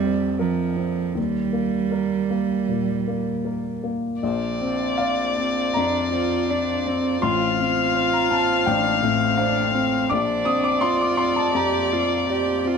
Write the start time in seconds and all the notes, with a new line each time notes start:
Already playing: A#1 F2 G3 C4 A#4
0.04 C4
0.39 F3 A#4
0.77 C4
1.15 D#2 G3
1.53 A#3
1.91 A#4
2.30 A#3
2.68 A#2
3.08 A#3
3.45 A#4
3.84 A#3
4.22 A#1 D4 F4 C5 D5
4.61 C4
4.97 D5 F5
5.38 C4
5.74 F2 D4 A#5
6.12 C4 F4
6.49 D4 D5
6.86 C4
7.22 A1 C4 F4 F5 C6
7.59 C4 F4
7.94 C5
8.13 A#5
8.30 C4 A5
8.66 A1 D4 G5
9.03 A2 C4
9.37 D4 C5 F5
9.75 C4
10.09 A#1 D4 F4 D5 D6
10.45 C4 D#6
10.64 D6
10.81 F4 D5 C6
11.01 D6
11.17 C4 C6
11.36 A5
11.54 F2 G4 A#5
11.93 C4 F4
12.29 G4 D5
12.65 C4 F4